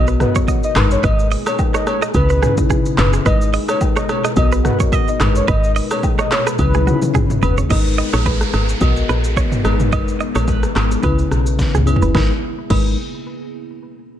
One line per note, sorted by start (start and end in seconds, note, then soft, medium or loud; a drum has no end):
0.00 0.25 B1 loud
0.00 0.15 B3 medium
0.00 0.15 F#4 medium
0.00 0.15 A#4 medium
0.00 0.16 D#5 medium
0.07 0.15 B4 medium
0.07 shaker medium
0.19 0.73 B3 medium
0.19 0.74 F#4 medium
0.19 0.74 A#4 medium
0.19 0.34 B4 medium
0.19 0.28 C#5 medium
0.19 cross-stick medium
0.19 mid tom loud
0.19 shaker medium
0.28 0.78 D#5 medium
0.35 0.43 C#5 medium
0.35 kick loud
0.35 shaker loud
0.48 0.63 D#5 medium
0.48 kick medium
0.48 shaker medium
0.63 0.74 D#5 medium
0.63 shaker medium
0.74 0.97 G#1 loud
0.74 2.13 A#2 medium
0.74 2.13 B2 medium
0.74 1.65 G#3 medium
0.74 1.65 D#4 medium
0.74 2.13 G#4 medium
0.74 1.65 A#4 medium
0.74 1.66 B4 medium
0.74 cross-stick loud
0.74 clap loud
0.74 mid tom loud
0.74 high agogo medium
0.74 shaker medium
0.91 1.02 C#5 medium
0.91 shaker medium
1.03 1.36 G#1 loud
1.03 1.12 B4 loud
1.03 1.28 D#5 loud
1.03 kick loud
1.03 high agogo medium
1.03 shaker medium
1.19 shaker medium
1.31 1.40 D#5 medium
1.31 open hi-hat soft
1.31 shaker soft
1.46 1.58 C#5 medium
1.46 cross-stick loud
1.46 high agogo medium
1.46 shaker loud
1.59 kick medium
1.59 low woodblock medium
1.59 shaker medium
1.74 1.81 C#5 medium
1.74 1.85 D#5 medium
1.74 cross-stick medium
1.74 shaker medium
1.87 2.00 C#5 medium
1.87 cross-stick loud
1.87 high agogo medium
1.87 shaker soft
2.02 2.09 D#5 medium
2.02 cross-stick loud
2.02 shaker loud
2.13 2.47 C#2 loud
2.13 2.37 C#3 medium
2.13 3.25 C#3 medium
2.13 3.25 B3 medium
2.13 2.37 C#4 medium
2.13 3.25 E4 medium
2.13 2.38 E4 medium
2.13 2.55 B4 loud
2.13 2.38 B4 medium
2.13 kick loud
2.13 high agogo medium
2.13 shaker medium
2.30 2.37 B4 medium
2.30 shaker medium
2.41 2.96 C#3 medium
2.41 2.96 C#4 medium
2.41 2.50 D#4 medium
2.41 2.51 G#4 medium
2.41 2.97 B4 medium
2.41 cross-stick medium
2.41 mid tom medium
2.41 shaker medium
2.49 3.00 E4 medium
2.57 kick loud
2.57 shaker loud
2.70 2.79 G#4 medium
2.70 kick medium
2.70 shaker medium
2.86 shaker medium
2.98 3.19 F#1 loud
2.98 3.06 B4 medium
2.98 3.11 B4 medium
2.98 cross-stick loud
2.98 clap loud
2.98 mid tom loud
2.98 high agogo medium
2.98 shaker medium
3.13 3.20 G#4 medium
3.13 shaker medium
3.25 3.58 G#1 loud
3.25 4.36 A#2 medium
3.25 4.36 B2 medium
3.25 3.98 G#3 medium
3.25 3.98 D#4 medium
3.25 4.36 G#4 medium
3.25 3.99 A#4 medium
3.25 3.34 B4 loud
3.25 3.99 B4 medium
3.25 3.50 D#5 loud
3.25 kick loud
3.25 high agogo medium
3.25 shaker medium
3.41 shaker medium
3.54 3.62 D#5 medium
3.54 open hi-hat soft
3.54 shaker soft
3.68 3.80 C#5 medium
3.68 cross-stick loud
3.68 high agogo medium
3.68 shaker loud
3.81 kick medium
3.81 low woodblock medium
3.81 shaker medium
3.96 4.04 C#5 medium
3.96 4.08 D#5 medium
3.96 cross-stick medium
3.96 shaker medium
4.09 4.22 C#5 medium
4.09 cross-stick loud
4.09 high agogo medium
4.09 shaker soft
4.24 4.31 D#5 medium
4.24 cross-stick loud
4.24 shaker loud
4.36 4.69 B1 loud
4.36 4.59 B3 medium
4.36 4.59 F#4 medium
4.36 4.60 A#4 medium
4.36 4.50 D#5 medium
4.36 4.60 D#5 medium
4.36 kick loud
4.36 high agogo medium
4.36 shaker medium
4.52 4.59 B4 medium
4.52 shaker medium
4.63 5.18 B3 medium
4.63 5.18 F#4 medium
4.63 5.19 A#4 medium
4.63 4.78 B4 medium
4.63 5.19 D#5 medium
4.63 cross-stick medium
4.63 mid tom loud
4.63 shaker medium
4.80 4.93 C#5 medium
4.80 kick loud
4.80 shaker loud
4.92 5.08 D#5 medium
4.92 kick medium
4.92 shaker medium
5.08 5.19 D#5 medium
5.08 shaker medium
5.19 5.41 G#1 loud
5.19 6.58 A#2 medium
5.19 6.58 B2 medium
5.19 6.09 G#3 medium
5.19 6.09 D#4 medium
5.19 6.58 G#4 medium
5.19 6.10 A#4 medium
5.19 6.10 B4 medium
5.19 cross-stick loud
5.19 clap loud
5.19 mid tom loud
5.19 high agogo medium
5.19 shaker medium
5.35 5.47 C#5 medium
5.35 shaker medium
5.48 5.81 G#1 loud
5.48 5.57 B4 loud
5.48 5.72 D#5 loud
5.48 kick loud
5.48 high agogo medium
5.48 shaker medium
5.64 shaker medium
5.76 5.84 D#5 medium
5.76 open hi-hat soft
5.76 shaker soft
5.91 6.02 C#5 medium
5.91 cross-stick loud
5.91 high agogo medium
5.91 shaker loud
6.03 kick medium
6.03 low woodblock medium
6.03 shaker medium
6.19 6.26 C#5 medium
6.19 6.30 D#5 medium
6.19 cross-stick medium
6.19 shaker medium
6.31 6.45 C#5 medium
6.31 cross-stick loud
6.31 clap loud
6.31 high agogo medium
6.31 shaker soft
6.47 6.54 B4 medium
6.47 cross-stick loud
6.47 shaker loud
6.58 6.92 C#2 loud
6.58 6.81 C#3 medium
6.58 7.69 C#3 medium
6.58 7.69 B3 medium
6.58 6.82 C#4 medium
6.58 7.69 E4 medium
6.58 6.82 E4 medium
6.58 7.00 B4 loud
6.58 6.82 B4 medium
6.58 kick loud
6.58 high tom medium
6.58 high agogo medium
6.58 shaker medium
6.74 6.81 G#4 medium
6.74 high tom medium
6.74 shaker medium
6.86 7.40 C#3 medium
6.86 7.41 C#4 medium
6.86 6.94 D#4 medium
6.86 6.95 F#4 medium
6.86 7.41 B4 medium
6.86 mid tom medium
6.86 shaker medium
6.94 7.44 E4 medium
7.02 mid tom medium
7.02 shaker loud
7.14 7.23 G#4 medium
7.14 kick medium
7.14 mid tom medium
7.14 shaker medium
7.30 mid tom medium
7.30 shaker medium
7.42 7.63 F#1 loud
7.42 7.51 B4 medium
7.42 7.56 B4 medium
7.42 floor tom loud
7.42 high agogo medium
7.42 shaker medium
7.58 7.65 C#5 medium
7.58 floor tom loud
7.58 shaker medium
7.69 8.03 G#1 loud
7.69 8.42 G#3 medium
7.69 8.80 G#3 medium
7.69 8.80 B3 medium
7.69 8.43 D#4 medium
7.69 8.80 G#4 medium
7.69 8.43 A#4 medium
7.69 8.44 B4 loud
7.69 7.79 D#5 medium
7.69 kick loud
7.69 crash medium
7.69 downlifter medium
7.69 high agogo medium
7.69 shaker medium
7.86 shaker medium
7.98 8.07 D#5 medium
7.98 shaker soft
8.13 8.44 A#1 loud
8.13 8.20 C#5 medium
8.13 cross-stick loud
8.13 high agogo medium
8.13 shaker medium
8.25 8.41 B4 medium
8.25 kick medium
8.25 shaker medium
8.41 cross-stick medium
8.41 shaker medium
8.53 8.75 G#1 medium
8.53 cross-stick loud
8.53 high agogo medium
8.53 shaker soft
8.69 shaker loud
8.80 9.02 B1 loud
8.80 9.35 B3 medium
8.80 9.35 F#4 medium
8.80 9.35 A#4 medium
8.80 9.36 D#5 loud
8.80 kick loud
8.80 high agogo medium
8.80 shaker medium
8.96 shaker medium
9.09 9.42 A#1 medium
9.09 9.18 B4 medium
9.09 cross-stick medium
9.09 shaker medium
9.24 shaker loud
9.37 9.52 C#5 medium
9.37 kick medium
9.37 shaker medium
9.52 mid tom medium
9.52 shaker medium
9.63 10.07 G#1 medium
9.63 10.53 G#3 medium
9.63 11.02 G#3 medium
9.63 11.02 B3 medium
9.63 10.54 D#4 medium
9.63 11.02 G#4 medium
9.63 10.54 A#4 medium
9.63 10.55 B4 loud
9.63 cross-stick loud
9.63 high agogo medium
9.63 shaker medium
9.80 mid tom loud
9.80 shaker medium
9.92 10.01 D#5 medium
9.92 kick loud
9.92 high agogo medium
9.92 shaker medium
10.08 shaker medium
10.20 10.29 D#5 medium
10.20 shaker soft
10.35 10.66 A#1 medium
10.35 10.48 C#5 medium
10.35 cross-stick loud
10.35 high agogo medium
10.35 shaker medium
10.48 10.63 B4 medium
10.48 kick medium
10.48 shaker medium
10.63 cross-stick medium
10.63 shaker medium
10.76 10.97 G#1 medium
10.76 cross-stick loud
10.76 clap medium
10.76 high agogo medium
10.76 shaker soft
10.91 shaker loud
11.02 11.24 C#2 loud
11.02 11.57 C#3 medium
11.02 12.14 C#3 medium
11.02 12.14 B3 medium
11.02 11.57 C#4 medium
11.02 12.14 E4 medium
11.02 11.58 E4 medium
11.02 11.19 B4 medium
11.02 11.58 B4 loud
11.02 kick loud
11.02 high agogo medium
11.02 shaker medium
11.19 shaker medium
11.31 11.64 B1 medium
11.31 cross-stick medium
11.31 shaker medium
11.46 shaker loud
11.59 kick medium
11.59 snare medium
11.59 shaker medium
11.74 11.95 C#2 medium
11.74 11.82 G#4 medium
11.74 mid tom medium
11.74 shaker medium
11.86 12.05 C#3 medium
11.86 12.06 C#4 medium
11.86 12.06 E4 medium
11.86 12.06 B4 medium
11.86 high agogo medium
11.86 shaker medium
11.96 floor tom loud
12.02 12.12 F#1 medium
12.02 12.09 B4 medium
12.02 shaker medium
12.15 12.31 G#1 medium
12.15 12.31 G#3 medium
12.15 12.31 D#4 medium
12.15 12.31 A#4 medium
12.15 12.31 B4 medium
12.15 12.26 B4 medium
12.15 kick loud
12.15 snare medium
12.15 high agogo medium
12.70 12.96 G#1 loud
12.70 12.96 G#3 medium
12.70 12.96 D#4 medium
12.70 12.96 A#4 medium
12.70 12.96 B4 loud
12.70 12.87 B4 medium
12.70 kick loud
12.70 crash medium
12.70 high agogo medium